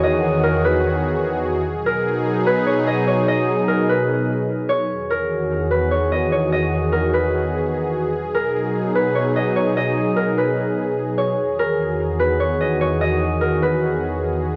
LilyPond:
<<
  \new Staff \with { instrumentName = "Harp" } { \time 4/4 \key e \lydian \tempo 4 = 148 dis''4 ais'8 b'4. r4 | r8 ais'4. b'8 cis''8 dis''8 cis''8 | dis''4 ais'8 b'2 cis''8 | r8 ais'4. b'8 cis''8 dis''8 cis''8 |
dis''4 ais'8 b'4. r4 | r8 ais'4. b'8 cis''8 dis''8 cis''8 | dis''4 ais'8 b'2 cis''8 | r8 ais'4. b'8 cis''8 dis''8 cis''8 |
dis''4 ais'8 b'4. r4 | }
  \new Staff \with { instrumentName = "Analog synth pad" } { \clef bass \time 4/4 \key e \lydian << { gis'1 | gis'1~ | gis'1 | gis'1~ |
gis'1~ | gis'1~ | gis'1~ | gis'1~ |
gis'1 | } \\ { <e, dis fis'>1 | <b, fis dis'>1~ | <b, fis dis'>1 | <e, dis fis'>1~ |
<e, dis fis'>1 | <b, fis dis'>1~ | <b, fis dis'>1 | <e, dis fis'>1~ |
<e, dis fis'>1 | } >> }
>>